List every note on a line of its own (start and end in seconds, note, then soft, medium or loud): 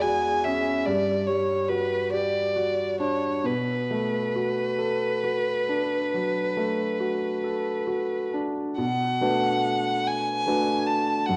0.00 0.82 E2 medium
0.00 0.88 G#3 soft
0.00 0.03 F#4 soft
0.00 0.69 F#4 soft
0.00 0.28 G#4 soft
0.00 0.45 G#5 medium
0.44 0.86 C#4 soft
0.44 0.87 E5 soft
0.86 3.42 G2 soft
0.86 1.28 D5 medium
1.27 1.96 G3 soft
1.27 1.70 C#5 soft
1.68 2.39 F#4 soft
1.68 2.12 B4 soft
2.13 2.84 G4 soft
2.13 2.99 D5 soft
2.56 3.27 F#4 soft
3.00 3.45 D4 soft
3.00 3.47 C#5 soft
3.44 6.09 B2 soft
3.44 8.34 B4 medium
3.91 4.61 A3 soft
4.35 5.06 F#4 soft
4.78 5.50 A4 soft
5.24 5.96 F#4 soft
5.69 6.40 D4 soft
6.14 6.84 F#3 soft
6.57 7.27 A3 soft
7.00 7.70 F#4 soft
7.44 8.16 A4 soft
7.87 8.60 F#4 soft
8.34 8.78 D4 soft
8.78 9.20 B2 soft
8.78 10.08 F#5 medium
9.21 10.43 A3 soft
9.21 10.43 D4 soft
9.21 10.43 F#4 soft
9.21 10.43 B4 soft
10.07 10.88 G#5 medium
10.47 11.24 A3 soft
10.47 11.24 D4 soft
10.47 11.24 F#4 soft
10.47 11.24 B4 soft
10.86 11.27 A5 medium
11.26 11.37 F#2 soft
11.26 11.37 F#5 medium